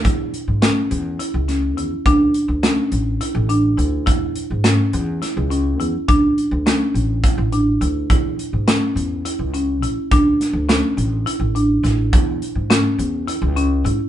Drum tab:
HH |xxxxxxx|xxxxxxx|xxxxxxx|xxxxxxx|
SD |--o--o-|--o----|--o-o--|--o----|
BD |o------|o------|o------|o---o--|

HH |xxxxxxx|xxxxxxx|xxxxxxx|
SD |--o----|-oo---o|--o----|
BD |o------|o------|o------|